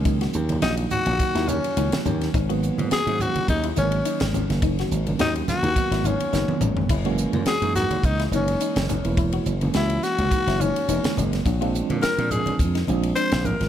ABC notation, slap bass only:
X:1
M:4/4
L:1/16
Q:"Swing 16ths" 1/4=105
K:G#m
V:1 name="Slap bass" clef=bass
C,,2 D,,2 A,,,2 z A,,, z D,,2 z C,, z D,,2 | G,,,3 G,, z G,,2 z D,,2 G,,,2 z G,,,2 F,,,- | F,,,2 G,,,2 D,,2 z D,, z G,,,2 z F,,, z G,,,2 | F,,,3 F,, z F,,2 z C,,2 F,,,2 z F,,,2 E,,,- |
E,,,2 F,,,2 C,,2 z C,, z F,,,2 z E,,, z F,,,2 | A,,,3 A,, z A,,2 z ^E,,2 A,,,2 z A,,,2 G,,, |]